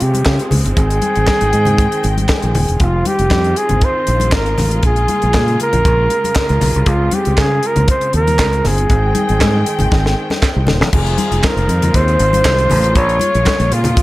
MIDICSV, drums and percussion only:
0, 0, Header, 1, 2, 480
1, 0, Start_track
1, 0, Tempo, 507614
1, 729, Time_signature, 4, 2, 24, 8
1, 13262, End_track
2, 0, Start_track
2, 0, Title_t, "Drums"
2, 3, Note_on_c, 9, 42, 63
2, 98, Note_off_c, 9, 42, 0
2, 130, Note_on_c, 9, 63, 56
2, 139, Note_on_c, 9, 42, 54
2, 225, Note_off_c, 9, 63, 0
2, 233, Note_off_c, 9, 42, 0
2, 242, Note_on_c, 9, 39, 83
2, 243, Note_on_c, 9, 38, 114
2, 246, Note_on_c, 9, 36, 106
2, 336, Note_off_c, 9, 39, 0
2, 338, Note_off_c, 9, 38, 0
2, 341, Note_off_c, 9, 36, 0
2, 371, Note_on_c, 9, 42, 46
2, 466, Note_off_c, 9, 42, 0
2, 481, Note_on_c, 9, 64, 93
2, 489, Note_on_c, 9, 46, 68
2, 576, Note_off_c, 9, 64, 0
2, 584, Note_off_c, 9, 46, 0
2, 619, Note_on_c, 9, 42, 44
2, 714, Note_off_c, 9, 42, 0
2, 725, Note_on_c, 9, 42, 70
2, 726, Note_on_c, 9, 36, 112
2, 820, Note_off_c, 9, 42, 0
2, 821, Note_off_c, 9, 36, 0
2, 855, Note_on_c, 9, 42, 44
2, 950, Note_off_c, 9, 42, 0
2, 960, Note_on_c, 9, 62, 31
2, 960, Note_on_c, 9, 63, 73
2, 963, Note_on_c, 9, 42, 61
2, 1055, Note_off_c, 9, 62, 0
2, 1055, Note_off_c, 9, 63, 0
2, 1058, Note_off_c, 9, 42, 0
2, 1092, Note_on_c, 9, 42, 36
2, 1187, Note_off_c, 9, 42, 0
2, 1203, Note_on_c, 9, 63, 74
2, 1204, Note_on_c, 9, 39, 77
2, 1206, Note_on_c, 9, 38, 89
2, 1208, Note_on_c, 9, 36, 96
2, 1298, Note_off_c, 9, 63, 0
2, 1299, Note_off_c, 9, 39, 0
2, 1300, Note_off_c, 9, 38, 0
2, 1303, Note_off_c, 9, 36, 0
2, 1332, Note_on_c, 9, 42, 53
2, 1427, Note_off_c, 9, 42, 0
2, 1445, Note_on_c, 9, 42, 60
2, 1449, Note_on_c, 9, 62, 36
2, 1539, Note_off_c, 9, 42, 0
2, 1544, Note_off_c, 9, 62, 0
2, 1564, Note_on_c, 9, 64, 80
2, 1573, Note_on_c, 9, 42, 46
2, 1659, Note_off_c, 9, 64, 0
2, 1668, Note_off_c, 9, 42, 0
2, 1687, Note_on_c, 9, 42, 78
2, 1688, Note_on_c, 9, 36, 113
2, 1782, Note_off_c, 9, 36, 0
2, 1782, Note_off_c, 9, 42, 0
2, 1815, Note_on_c, 9, 42, 44
2, 1910, Note_off_c, 9, 42, 0
2, 1922, Note_on_c, 9, 62, 37
2, 1927, Note_on_c, 9, 42, 59
2, 2016, Note_off_c, 9, 62, 0
2, 2022, Note_off_c, 9, 42, 0
2, 2057, Note_on_c, 9, 63, 66
2, 2059, Note_on_c, 9, 42, 53
2, 2152, Note_off_c, 9, 63, 0
2, 2154, Note_off_c, 9, 42, 0
2, 2164, Note_on_c, 9, 39, 83
2, 2166, Note_on_c, 9, 38, 116
2, 2168, Note_on_c, 9, 36, 106
2, 2259, Note_off_c, 9, 39, 0
2, 2261, Note_off_c, 9, 38, 0
2, 2262, Note_off_c, 9, 36, 0
2, 2293, Note_on_c, 9, 42, 42
2, 2387, Note_off_c, 9, 42, 0
2, 2408, Note_on_c, 9, 46, 67
2, 2410, Note_on_c, 9, 62, 39
2, 2410, Note_on_c, 9, 64, 90
2, 2502, Note_off_c, 9, 46, 0
2, 2505, Note_off_c, 9, 62, 0
2, 2505, Note_off_c, 9, 64, 0
2, 2537, Note_on_c, 9, 42, 43
2, 2632, Note_off_c, 9, 42, 0
2, 2645, Note_on_c, 9, 42, 70
2, 2649, Note_on_c, 9, 36, 98
2, 2740, Note_off_c, 9, 42, 0
2, 2743, Note_off_c, 9, 36, 0
2, 2887, Note_on_c, 9, 42, 61
2, 2893, Note_on_c, 9, 63, 70
2, 2982, Note_off_c, 9, 42, 0
2, 2988, Note_off_c, 9, 63, 0
2, 3014, Note_on_c, 9, 42, 39
2, 3109, Note_off_c, 9, 42, 0
2, 3121, Note_on_c, 9, 62, 30
2, 3121, Note_on_c, 9, 63, 68
2, 3130, Note_on_c, 9, 36, 95
2, 3130, Note_on_c, 9, 39, 79
2, 3131, Note_on_c, 9, 38, 102
2, 3215, Note_off_c, 9, 62, 0
2, 3215, Note_off_c, 9, 63, 0
2, 3224, Note_off_c, 9, 39, 0
2, 3225, Note_off_c, 9, 36, 0
2, 3226, Note_off_c, 9, 38, 0
2, 3255, Note_on_c, 9, 42, 33
2, 3350, Note_off_c, 9, 42, 0
2, 3370, Note_on_c, 9, 42, 55
2, 3464, Note_off_c, 9, 42, 0
2, 3490, Note_on_c, 9, 42, 50
2, 3493, Note_on_c, 9, 64, 81
2, 3584, Note_off_c, 9, 42, 0
2, 3587, Note_off_c, 9, 64, 0
2, 3606, Note_on_c, 9, 42, 69
2, 3609, Note_on_c, 9, 36, 112
2, 3700, Note_off_c, 9, 42, 0
2, 3704, Note_off_c, 9, 36, 0
2, 3847, Note_on_c, 9, 42, 59
2, 3941, Note_off_c, 9, 42, 0
2, 3970, Note_on_c, 9, 63, 64
2, 3979, Note_on_c, 9, 42, 51
2, 4064, Note_off_c, 9, 63, 0
2, 4074, Note_off_c, 9, 42, 0
2, 4086, Note_on_c, 9, 39, 86
2, 4088, Note_on_c, 9, 38, 121
2, 4089, Note_on_c, 9, 36, 98
2, 4181, Note_off_c, 9, 39, 0
2, 4182, Note_off_c, 9, 38, 0
2, 4184, Note_off_c, 9, 36, 0
2, 4217, Note_on_c, 9, 42, 33
2, 4312, Note_off_c, 9, 42, 0
2, 4327, Note_on_c, 9, 64, 82
2, 4328, Note_on_c, 9, 38, 30
2, 4332, Note_on_c, 9, 46, 62
2, 4421, Note_off_c, 9, 64, 0
2, 4422, Note_off_c, 9, 38, 0
2, 4426, Note_off_c, 9, 46, 0
2, 4455, Note_on_c, 9, 42, 43
2, 4550, Note_off_c, 9, 42, 0
2, 4564, Note_on_c, 9, 42, 69
2, 4569, Note_on_c, 9, 36, 92
2, 4659, Note_off_c, 9, 42, 0
2, 4663, Note_off_c, 9, 36, 0
2, 4691, Note_on_c, 9, 42, 34
2, 4785, Note_off_c, 9, 42, 0
2, 4806, Note_on_c, 9, 42, 62
2, 4808, Note_on_c, 9, 63, 70
2, 4901, Note_off_c, 9, 42, 0
2, 4903, Note_off_c, 9, 63, 0
2, 4935, Note_on_c, 9, 42, 35
2, 5029, Note_off_c, 9, 42, 0
2, 5050, Note_on_c, 9, 63, 72
2, 5051, Note_on_c, 9, 39, 82
2, 5053, Note_on_c, 9, 36, 99
2, 5053, Note_on_c, 9, 38, 100
2, 5144, Note_off_c, 9, 63, 0
2, 5146, Note_off_c, 9, 39, 0
2, 5147, Note_off_c, 9, 36, 0
2, 5147, Note_off_c, 9, 38, 0
2, 5180, Note_on_c, 9, 42, 34
2, 5274, Note_off_c, 9, 42, 0
2, 5293, Note_on_c, 9, 42, 57
2, 5295, Note_on_c, 9, 62, 33
2, 5387, Note_off_c, 9, 42, 0
2, 5389, Note_off_c, 9, 62, 0
2, 5416, Note_on_c, 9, 64, 86
2, 5417, Note_on_c, 9, 42, 50
2, 5511, Note_off_c, 9, 64, 0
2, 5512, Note_off_c, 9, 42, 0
2, 5532, Note_on_c, 9, 42, 74
2, 5533, Note_on_c, 9, 36, 118
2, 5627, Note_off_c, 9, 36, 0
2, 5627, Note_off_c, 9, 42, 0
2, 5770, Note_on_c, 9, 42, 61
2, 5771, Note_on_c, 9, 62, 35
2, 5865, Note_off_c, 9, 42, 0
2, 5865, Note_off_c, 9, 62, 0
2, 5903, Note_on_c, 9, 63, 59
2, 5909, Note_on_c, 9, 42, 59
2, 5997, Note_off_c, 9, 63, 0
2, 6004, Note_off_c, 9, 42, 0
2, 6010, Note_on_c, 9, 39, 97
2, 6011, Note_on_c, 9, 38, 115
2, 6012, Note_on_c, 9, 36, 99
2, 6105, Note_off_c, 9, 39, 0
2, 6106, Note_off_c, 9, 38, 0
2, 6107, Note_off_c, 9, 36, 0
2, 6138, Note_on_c, 9, 42, 35
2, 6233, Note_off_c, 9, 42, 0
2, 6249, Note_on_c, 9, 38, 34
2, 6253, Note_on_c, 9, 46, 69
2, 6255, Note_on_c, 9, 62, 40
2, 6255, Note_on_c, 9, 64, 94
2, 6343, Note_off_c, 9, 38, 0
2, 6347, Note_off_c, 9, 46, 0
2, 6349, Note_off_c, 9, 62, 0
2, 6349, Note_off_c, 9, 64, 0
2, 6377, Note_on_c, 9, 42, 41
2, 6472, Note_off_c, 9, 42, 0
2, 6488, Note_on_c, 9, 42, 75
2, 6491, Note_on_c, 9, 36, 105
2, 6583, Note_off_c, 9, 42, 0
2, 6586, Note_off_c, 9, 36, 0
2, 6727, Note_on_c, 9, 42, 66
2, 6737, Note_on_c, 9, 62, 33
2, 6737, Note_on_c, 9, 63, 73
2, 6822, Note_off_c, 9, 42, 0
2, 6832, Note_off_c, 9, 62, 0
2, 6832, Note_off_c, 9, 63, 0
2, 6857, Note_on_c, 9, 42, 39
2, 6951, Note_off_c, 9, 42, 0
2, 6974, Note_on_c, 9, 39, 87
2, 6975, Note_off_c, 9, 39, 0
2, 6975, Note_on_c, 9, 36, 107
2, 6975, Note_on_c, 9, 39, 76
2, 6977, Note_on_c, 9, 38, 105
2, 6977, Note_on_c, 9, 62, 30
2, 6977, Note_on_c, 9, 63, 71
2, 7070, Note_off_c, 9, 36, 0
2, 7070, Note_off_c, 9, 39, 0
2, 7071, Note_off_c, 9, 38, 0
2, 7072, Note_off_c, 9, 62, 0
2, 7072, Note_off_c, 9, 63, 0
2, 7212, Note_on_c, 9, 42, 59
2, 7307, Note_off_c, 9, 42, 0
2, 7336, Note_on_c, 9, 42, 50
2, 7338, Note_on_c, 9, 64, 84
2, 7430, Note_off_c, 9, 42, 0
2, 7433, Note_off_c, 9, 64, 0
2, 7449, Note_on_c, 9, 42, 83
2, 7453, Note_on_c, 9, 36, 112
2, 7544, Note_off_c, 9, 42, 0
2, 7547, Note_off_c, 9, 36, 0
2, 7576, Note_on_c, 9, 42, 36
2, 7670, Note_off_c, 9, 42, 0
2, 7689, Note_on_c, 9, 42, 60
2, 7783, Note_off_c, 9, 42, 0
2, 7822, Note_on_c, 9, 63, 57
2, 7825, Note_on_c, 9, 42, 54
2, 7917, Note_off_c, 9, 63, 0
2, 7920, Note_off_c, 9, 42, 0
2, 7933, Note_on_c, 9, 39, 91
2, 7935, Note_on_c, 9, 36, 100
2, 7935, Note_on_c, 9, 38, 118
2, 7939, Note_off_c, 9, 39, 0
2, 7939, Note_on_c, 9, 39, 96
2, 8029, Note_off_c, 9, 36, 0
2, 8029, Note_off_c, 9, 38, 0
2, 8034, Note_off_c, 9, 39, 0
2, 8064, Note_on_c, 9, 42, 32
2, 8158, Note_off_c, 9, 42, 0
2, 8174, Note_on_c, 9, 38, 30
2, 8176, Note_on_c, 9, 64, 90
2, 8178, Note_on_c, 9, 46, 66
2, 8269, Note_off_c, 9, 38, 0
2, 8271, Note_off_c, 9, 64, 0
2, 8273, Note_off_c, 9, 46, 0
2, 8302, Note_on_c, 9, 42, 46
2, 8396, Note_off_c, 9, 42, 0
2, 8412, Note_on_c, 9, 42, 69
2, 8414, Note_on_c, 9, 36, 97
2, 8507, Note_off_c, 9, 42, 0
2, 8509, Note_off_c, 9, 36, 0
2, 8651, Note_on_c, 9, 42, 60
2, 8651, Note_on_c, 9, 62, 32
2, 8651, Note_on_c, 9, 63, 74
2, 8745, Note_off_c, 9, 42, 0
2, 8746, Note_off_c, 9, 62, 0
2, 8746, Note_off_c, 9, 63, 0
2, 8783, Note_on_c, 9, 42, 41
2, 8877, Note_off_c, 9, 42, 0
2, 8891, Note_on_c, 9, 62, 35
2, 8891, Note_on_c, 9, 63, 72
2, 8896, Note_on_c, 9, 39, 96
2, 8899, Note_on_c, 9, 36, 98
2, 8900, Note_off_c, 9, 39, 0
2, 8900, Note_on_c, 9, 39, 88
2, 8902, Note_on_c, 9, 38, 106
2, 8986, Note_off_c, 9, 62, 0
2, 8986, Note_off_c, 9, 63, 0
2, 8993, Note_off_c, 9, 36, 0
2, 8995, Note_off_c, 9, 39, 0
2, 8996, Note_off_c, 9, 38, 0
2, 9138, Note_on_c, 9, 42, 62
2, 9138, Note_on_c, 9, 62, 35
2, 9232, Note_off_c, 9, 62, 0
2, 9233, Note_off_c, 9, 42, 0
2, 9254, Note_on_c, 9, 64, 90
2, 9264, Note_on_c, 9, 42, 47
2, 9348, Note_off_c, 9, 64, 0
2, 9359, Note_off_c, 9, 42, 0
2, 9375, Note_on_c, 9, 62, 39
2, 9379, Note_on_c, 9, 36, 109
2, 9385, Note_on_c, 9, 38, 54
2, 9470, Note_off_c, 9, 62, 0
2, 9473, Note_off_c, 9, 36, 0
2, 9480, Note_off_c, 9, 38, 0
2, 9513, Note_on_c, 9, 38, 55
2, 9607, Note_off_c, 9, 38, 0
2, 9742, Note_on_c, 9, 63, 57
2, 9749, Note_on_c, 9, 38, 68
2, 9837, Note_off_c, 9, 63, 0
2, 9844, Note_off_c, 9, 38, 0
2, 9856, Note_on_c, 9, 62, 37
2, 9857, Note_on_c, 9, 36, 101
2, 9858, Note_on_c, 9, 38, 88
2, 9858, Note_on_c, 9, 39, 99
2, 9950, Note_off_c, 9, 62, 0
2, 9952, Note_off_c, 9, 36, 0
2, 9953, Note_off_c, 9, 38, 0
2, 9953, Note_off_c, 9, 39, 0
2, 10086, Note_on_c, 9, 62, 44
2, 10086, Note_on_c, 9, 63, 65
2, 10086, Note_on_c, 9, 64, 94
2, 10099, Note_on_c, 9, 38, 97
2, 10181, Note_off_c, 9, 62, 0
2, 10181, Note_off_c, 9, 63, 0
2, 10181, Note_off_c, 9, 64, 0
2, 10194, Note_off_c, 9, 38, 0
2, 10224, Note_on_c, 9, 38, 92
2, 10319, Note_off_c, 9, 38, 0
2, 10332, Note_on_c, 9, 49, 95
2, 10336, Note_on_c, 9, 36, 97
2, 10427, Note_off_c, 9, 49, 0
2, 10430, Note_off_c, 9, 36, 0
2, 10462, Note_on_c, 9, 42, 36
2, 10557, Note_off_c, 9, 42, 0
2, 10570, Note_on_c, 9, 62, 31
2, 10570, Note_on_c, 9, 63, 77
2, 10572, Note_on_c, 9, 42, 62
2, 10664, Note_off_c, 9, 62, 0
2, 10664, Note_off_c, 9, 63, 0
2, 10667, Note_off_c, 9, 42, 0
2, 10701, Note_on_c, 9, 42, 42
2, 10796, Note_off_c, 9, 42, 0
2, 10807, Note_on_c, 9, 63, 72
2, 10811, Note_on_c, 9, 39, 100
2, 10817, Note_on_c, 9, 36, 103
2, 10820, Note_off_c, 9, 39, 0
2, 10820, Note_on_c, 9, 39, 82
2, 10821, Note_on_c, 9, 38, 96
2, 10901, Note_off_c, 9, 63, 0
2, 10912, Note_off_c, 9, 36, 0
2, 10914, Note_off_c, 9, 39, 0
2, 10916, Note_off_c, 9, 38, 0
2, 10944, Note_on_c, 9, 42, 32
2, 11039, Note_off_c, 9, 42, 0
2, 11055, Note_on_c, 9, 42, 58
2, 11058, Note_on_c, 9, 62, 37
2, 11149, Note_off_c, 9, 42, 0
2, 11152, Note_off_c, 9, 62, 0
2, 11180, Note_on_c, 9, 42, 53
2, 11180, Note_on_c, 9, 64, 78
2, 11274, Note_off_c, 9, 64, 0
2, 11275, Note_off_c, 9, 42, 0
2, 11293, Note_on_c, 9, 36, 117
2, 11293, Note_on_c, 9, 42, 82
2, 11388, Note_off_c, 9, 36, 0
2, 11388, Note_off_c, 9, 42, 0
2, 11423, Note_on_c, 9, 42, 34
2, 11517, Note_off_c, 9, 42, 0
2, 11529, Note_on_c, 9, 62, 40
2, 11531, Note_on_c, 9, 42, 64
2, 11624, Note_off_c, 9, 62, 0
2, 11626, Note_off_c, 9, 42, 0
2, 11660, Note_on_c, 9, 63, 67
2, 11669, Note_on_c, 9, 42, 59
2, 11754, Note_off_c, 9, 63, 0
2, 11763, Note_off_c, 9, 42, 0
2, 11771, Note_on_c, 9, 62, 38
2, 11773, Note_on_c, 9, 36, 97
2, 11774, Note_on_c, 9, 39, 96
2, 11775, Note_on_c, 9, 38, 113
2, 11866, Note_off_c, 9, 62, 0
2, 11868, Note_off_c, 9, 36, 0
2, 11869, Note_off_c, 9, 39, 0
2, 11870, Note_off_c, 9, 38, 0
2, 11899, Note_on_c, 9, 42, 39
2, 11994, Note_off_c, 9, 42, 0
2, 12006, Note_on_c, 9, 64, 91
2, 12014, Note_on_c, 9, 46, 67
2, 12100, Note_off_c, 9, 64, 0
2, 12109, Note_off_c, 9, 46, 0
2, 12142, Note_on_c, 9, 42, 45
2, 12236, Note_off_c, 9, 42, 0
2, 12246, Note_on_c, 9, 62, 33
2, 12251, Note_on_c, 9, 36, 108
2, 12251, Note_on_c, 9, 42, 78
2, 12341, Note_off_c, 9, 62, 0
2, 12345, Note_off_c, 9, 36, 0
2, 12346, Note_off_c, 9, 42, 0
2, 12378, Note_on_c, 9, 42, 37
2, 12473, Note_off_c, 9, 42, 0
2, 12477, Note_on_c, 9, 63, 72
2, 12490, Note_on_c, 9, 42, 68
2, 12572, Note_off_c, 9, 63, 0
2, 12585, Note_off_c, 9, 42, 0
2, 12620, Note_on_c, 9, 42, 42
2, 12714, Note_off_c, 9, 42, 0
2, 12721, Note_on_c, 9, 63, 78
2, 12728, Note_on_c, 9, 39, 100
2, 12734, Note_on_c, 9, 36, 107
2, 12737, Note_off_c, 9, 39, 0
2, 12737, Note_on_c, 9, 39, 84
2, 12739, Note_on_c, 9, 38, 119
2, 12815, Note_off_c, 9, 63, 0
2, 12829, Note_off_c, 9, 36, 0
2, 12832, Note_off_c, 9, 39, 0
2, 12833, Note_off_c, 9, 38, 0
2, 12858, Note_on_c, 9, 42, 39
2, 12953, Note_off_c, 9, 42, 0
2, 12970, Note_on_c, 9, 42, 58
2, 13065, Note_off_c, 9, 42, 0
2, 13086, Note_on_c, 9, 64, 95
2, 13093, Note_on_c, 9, 42, 55
2, 13181, Note_off_c, 9, 64, 0
2, 13188, Note_off_c, 9, 42, 0
2, 13203, Note_on_c, 9, 62, 38
2, 13209, Note_on_c, 9, 42, 88
2, 13210, Note_on_c, 9, 36, 117
2, 13262, Note_off_c, 9, 36, 0
2, 13262, Note_off_c, 9, 42, 0
2, 13262, Note_off_c, 9, 62, 0
2, 13262, End_track
0, 0, End_of_file